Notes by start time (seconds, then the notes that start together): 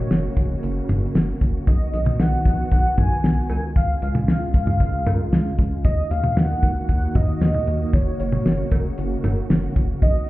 Already playing: C#3 A#3 F#4 C#5
0.11 F#1, snare, closed hi-hat
0.37 F1, kick, closed hi-hat
0.63 F#1, closed hi-hat
0.89 F#1, closed hi-hat, mid tom
1.15 F#1, snare, closed hi-hat
1.41 F#1, kick, closed hi-hat
1.67 B1 D#3 B3 F#4 D#5, kick, closed hi-hat
1.93 B1, closed hi-hat
2.06 mid tom
2.20 B1 F#5, snare, closed hi-hat
2.45 A#1, kick, closed hi-hat
2.72 B1 F#5, kick, closed hi-hat
2.98 B1 G#5, kick, closed hi-hat, mid tom
3.24 B1, snare, closed hi-hat
3.50 C#2 C#3 G#3 F4 G#5, closed hi-hat, cowbell
3.76 F5, kick, closed hi-hat
4.02 C#2 F5, closed hi-hat
4.15 mid tom
4.28 C#2 F5, snare, closed hi-hat
4.54 C#2 F5, kick, closed hi-hat
4.67 mid tom
4.80 C#2, kick, closed hi-hat
5.06 C#2, closed hi-hat, mid tom, cowbell
5.32 C#2, snare, closed hi-hat
5.59 C#2, kick, closed hi-hat
5.84 D#2 D#3 A#3 F#4 D#5, kick, closed hi-hat
6.11 D#2 F5, closed hi-hat
6.24 mid tom
6.37 D#2 F#5, snare, closed hi-hat
6.63 C#2, kick, closed hi-hat
6.89 D#2 F#5, kick, closed hi-hat
7.15 D#2 D#5, kick, closed hi-hat, mid tom
7.41 D#2, snare, closed hi-hat
7.54 mid tom
7.67 D#2, closed hi-hat
7.93 F#1 C#3 C#5, kick, closed hi-hat
8.20 F#1 C#5, closed hi-hat
8.32 mid tom
8.46 F#1, snare, closed hi-hat
8.71 F1, kick, closed hi-hat, cowbell
8.98 F#1, closed hi-hat
9.24 F#1, closed hi-hat, mid tom, cowbell
9.50 F#1, snare, closed hi-hat
9.76 F#1, kick, closed hi-hat
10.02 B1 D#3 B3 D#5, kick, closed hi-hat